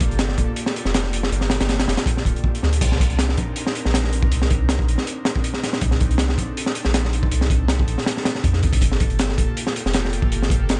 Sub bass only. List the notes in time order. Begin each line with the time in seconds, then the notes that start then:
0.10 G1
0.38 F1
0.85 F1
1.32 G1
1.61 G1
1.88 F1
2.25 D1
2.63 D2
2.81 C2
3.10 C2
3.38 A#1
3.86 A#1
4.32 C2
4.61 C2
4.88 A#1
5.82 C2
6.11 C2
6.38 A#1
6.85 A#1
7.32 C2
7.60 C2
7.88 A#1
8.44 F2
8.63 D#2
8.73 C2
8.81 G1
9.11 G1
9.38 F1
9.86 F1
10.32 G1
10.61 G1